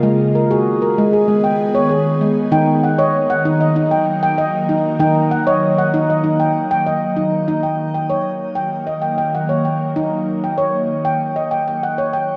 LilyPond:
<<
  \new Staff \with { instrumentName = "Handpan" } { \time 4/4 \key aes \dorian \tempo 4 = 97 << { r8 bes'16 aes'8 bes'8 aes'8 g''8. aes'8. r16 | g''8 ges''16 ees''8 ges''8 ees''8 g''8. ees''8. r16 | g''8 ges''16 ees''8 ges''8 ees''8 g''8. ees''8. r16 | r16 g''8 g''8. r8. ees''8 g''16 ges''8 g''8~ |
g''16 r8 g''8. r8. ees''8 g''16 ges''8 g''8 | } \\ { r8. ges'8 r16 aes8 aes8 r16 des''8 r16 aes8 | ees'8 r16 des''8 r16 ees'8 ees'8 r16 g''8 r16 ees'8 | ees'8 r16 des''8 r16 ees'8 ees'8 r16 g''8 r16 ees'8 | ees'8 r8 des''8 r16 g''8 r16 g''8 r16 des''8 r16 |
ees'8 r8 des''8 r16 g''8 r16 g''8 r16 des''8 r16 | } >> }
  \new Staff \with { instrumentName = "Handpan" } { \clef bass \time 4/4 \key aes \dorian aes1 | ees1 | ees1 | r1 |
r1 | }
  \new Staff \with { instrumentName = "Ambient pad" } { \clef bass \time 4/4 \key aes \dorian << { <ces' aes'>1 | <ges bes>1~ | <ges bes>1 | <ges bes>1~ |
<ges bes>1 | } \\ { ees1~ | ees1~ | ees1 | ees1~ |
ees1 | } >> }
>>